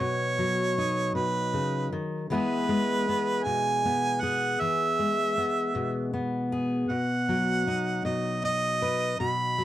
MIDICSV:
0, 0, Header, 1, 3, 480
1, 0, Start_track
1, 0, Key_signature, 5, "major"
1, 0, Tempo, 766284
1, 1436, Time_signature, 6, 3, 24, 8
1, 6040, End_track
2, 0, Start_track
2, 0, Title_t, "Harmonica"
2, 0, Program_c, 0, 22
2, 0, Note_on_c, 0, 73, 75
2, 712, Note_off_c, 0, 73, 0
2, 718, Note_on_c, 0, 71, 67
2, 1232, Note_off_c, 0, 71, 0
2, 1440, Note_on_c, 0, 71, 89
2, 2155, Note_on_c, 0, 80, 86
2, 2164, Note_off_c, 0, 71, 0
2, 2635, Note_on_c, 0, 78, 75
2, 2645, Note_off_c, 0, 80, 0
2, 2881, Note_on_c, 0, 76, 86
2, 2890, Note_off_c, 0, 78, 0
2, 3839, Note_off_c, 0, 76, 0
2, 4314, Note_on_c, 0, 78, 73
2, 5011, Note_off_c, 0, 78, 0
2, 5041, Note_on_c, 0, 75, 63
2, 5262, Note_off_c, 0, 75, 0
2, 5291, Note_on_c, 0, 75, 85
2, 5739, Note_off_c, 0, 75, 0
2, 5761, Note_on_c, 0, 83, 93
2, 6040, Note_off_c, 0, 83, 0
2, 6040, End_track
3, 0, Start_track
3, 0, Title_t, "Steel-string acoustic guitar"
3, 0, Program_c, 1, 25
3, 0, Note_on_c, 1, 47, 56
3, 0, Note_on_c, 1, 54, 49
3, 0, Note_on_c, 1, 71, 49
3, 233, Note_off_c, 1, 54, 0
3, 241, Note_on_c, 1, 54, 54
3, 489, Note_on_c, 1, 63, 49
3, 713, Note_off_c, 1, 47, 0
3, 720, Note_on_c, 1, 47, 50
3, 958, Note_off_c, 1, 47, 0
3, 961, Note_on_c, 1, 49, 44
3, 980, Note_off_c, 1, 71, 0
3, 1199, Note_off_c, 1, 49, 0
3, 1206, Note_on_c, 1, 51, 50
3, 1414, Note_off_c, 1, 63, 0
3, 1439, Note_off_c, 1, 51, 0
3, 1439, Note_off_c, 1, 54, 0
3, 1441, Note_on_c, 1, 52, 53
3, 1446, Note_on_c, 1, 56, 46
3, 1451, Note_on_c, 1, 59, 48
3, 1456, Note_on_c, 1, 64, 48
3, 1462, Note_on_c, 1, 68, 47
3, 1681, Note_off_c, 1, 56, 0
3, 1683, Note_on_c, 1, 56, 53
3, 1932, Note_off_c, 1, 59, 0
3, 1934, Note_on_c, 1, 59, 45
3, 2166, Note_on_c, 1, 47, 47
3, 2410, Note_off_c, 1, 59, 0
3, 2413, Note_on_c, 1, 59, 42
3, 2640, Note_off_c, 1, 68, 0
3, 2648, Note_on_c, 1, 68, 54
3, 2851, Note_off_c, 1, 52, 0
3, 2851, Note_off_c, 1, 56, 0
3, 2852, Note_off_c, 1, 47, 0
3, 2858, Note_off_c, 1, 64, 0
3, 2889, Note_on_c, 1, 52, 50
3, 3126, Note_on_c, 1, 56, 49
3, 3365, Note_off_c, 1, 59, 0
3, 3367, Note_on_c, 1, 59, 47
3, 3601, Note_on_c, 1, 47, 51
3, 3840, Note_off_c, 1, 59, 0
3, 3843, Note_on_c, 1, 59, 42
3, 4078, Note_off_c, 1, 68, 0
3, 4086, Note_on_c, 1, 68, 49
3, 4290, Note_off_c, 1, 47, 0
3, 4293, Note_off_c, 1, 56, 0
3, 4294, Note_off_c, 1, 52, 0
3, 4321, Note_off_c, 1, 68, 0
3, 4321, Note_on_c, 1, 47, 47
3, 4563, Note_on_c, 1, 54, 50
3, 4803, Note_off_c, 1, 59, 0
3, 4806, Note_on_c, 1, 63, 45
3, 5039, Note_off_c, 1, 47, 0
3, 5041, Note_on_c, 1, 47, 55
3, 5282, Note_off_c, 1, 63, 0
3, 5284, Note_on_c, 1, 63, 40
3, 5526, Note_on_c, 1, 71, 55
3, 5730, Note_off_c, 1, 47, 0
3, 5732, Note_off_c, 1, 71, 0
3, 5762, Note_on_c, 1, 47, 58
3, 5995, Note_off_c, 1, 54, 0
3, 6002, Note_on_c, 1, 54, 54
3, 6040, Note_off_c, 1, 47, 0
3, 6040, Note_off_c, 1, 54, 0
3, 6040, Note_off_c, 1, 63, 0
3, 6040, End_track
0, 0, End_of_file